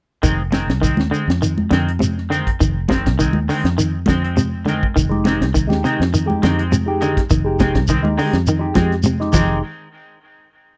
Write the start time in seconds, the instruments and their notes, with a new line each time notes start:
0.22 fingered electric bass F1, clean electric guitar D#3 G#3 C4, kick, closed hi-hat, shekere
0.52 clean electric guitar D#3 G#3 C4, muted clean electric guitar stroke, snare, closed hi-hat, high conga, shekere
0.68 fingered electric bass C2, snare, closed hi-hat
0.82 clean electric guitar D#3 G#3 C4, muted clean electric guitar stroke, kick, closed hi-hat, shekere
0.97 fingered electric bass D#2, snare, high conga
1.11 clean electric guitar D3 G#3 C4, muted clean electric guitar stroke, closed hi-hat, shekere
1.28 fingered electric bass F2, snare, closed hi-hat
1.42 clean electric guitar D#3, closed hi-hat, shekere
1.58 high conga
1.71 fingered electric bass F2, clean electric guitar D3 D#3 G#3 C4, snare, closed hi-hat, high conga, shekere
1.88 closed hi-hat
1.99 clean electric guitar C3, closed hi-hat, high conga, shekere
2.18 snare
2.30 clean electric guitar D3 D#3 G#3 C4, closed hi-hat, shekere
2.47 kick, closed hi-hat
2.60 fingered electric bass F1, clean electric guitar D#3, kick, closed hi-hat, shekere
2.89 clean electric guitar C3 D#3 G#3 C4, kick, snare, closed hi-hat, high conga, shekere
3.06 fingered electric bass C2, kick, snare, closed hi-hat
3.19 clean electric guitar D#3 G#3 C4, kick, closed hi-hat, shekere
3.33 fingered electric bass D#2, high conga
3.49 clean electric guitar D3 D#3 G#3 C4, open hi-hat, shekere
3.64 fingered electric bass F2, snare, closed hi-hat
3.78 clean electric guitar D#3, closed hi-hat, shekere
4.06 fingered electric bass F2, clean electric guitar D3 G#3 C4, muted clean electric guitar stroke, kick, snare, closed hi-hat, high conga, shekere
4.24 clean electric guitar G#3 C4, closed hi-hat
4.37 clean electric guitar C3, closed hi-hat, high conga, shekere
4.65 clean electric guitar D3 D#3 G#3 C4, closed hi-hat, high conga, shekere
4.83 kick
4.96 fingered electric bass F1, clean electric guitar D#3, kick, closed hi-hat, shekere
5.09 tine electric piano G#3 D#4 G4, high conga
5.25 clean electric guitar C3 D#3 G#3 C4, snare, closed hi-hat, high conga, shekere
5.41 fingered electric bass C2, snare, closed hi-hat
5.54 clean electric guitar D#3, kick, closed hi-hat, shekere
5.67 fingered electric bass D#2, tine electric piano G#3 D#4 G4, high conga
5.72 snare
5.84 clean electric guitar C3 D#3 G#3 C4, closed hi-hat, shekere
6.00 fingered electric bass F2, snare, closed hi-hat
6.14 clean electric guitar D#3, closed hi-hat, shekere
6.26 tine electric piano G#3 D#4 G4, high conga
6.42 fingered electric bass F2, clean electric guitar D3 D#3 G#3 C4, snare, closed hi-hat, high conga, shekere
6.58 clean electric guitar G#3 C4, closed hi-hat
6.72 clean electric guitar C3, closed hi-hat, high conga, shekere
6.86 tine electric piano G#3 D#4 G4
7.01 clean electric guitar D3 D#3 G#3 C4, closed hi-hat, shekere
7.17 kick, snare, closed hi-hat
7.30 fingered electric bass F1, clean electric guitar D#3, kick, closed hi-hat, shekere
7.44 tine electric piano G#3 D#4 G4
7.59 clean electric guitar C3 D#3 G#3 C4, kick, snare, closed hi-hat, high conga, shekere
7.75 fingered electric bass C2, kick, snare, closed hi-hat
7.88 clean electric guitar D#3 G#3 C4, kick, closed hi-hat, shekere
8.03 fingered electric bass D#2, tine electric piano G#3 D#4 G4, high conga
8.17 clean electric guitar D3 D#3 G#3 C4, open hi-hat, shekere
8.33 fingered electric bass F2, snare, closed hi-hat
8.47 clean electric guitar D#3, closed hi-hat, shekere
8.59 tine electric piano G#3 D#4 G4
8.75 fingered electric bass F2, clean electric guitar F3 G#3 C4, kick, snare, closed hi-hat, high conga, shekere
8.92 snare, closed hi-hat
9.03 clean electric guitar C3, closed hi-hat, high conga, shekere
9.19 tine electric piano G#3 D#4 G4, snare
9.32 fingered electric bass F1, clean electric guitar D#3 F3 G#3 C4, tine electric piano G#3 D#4 G4, kick, crash, low conga, shekere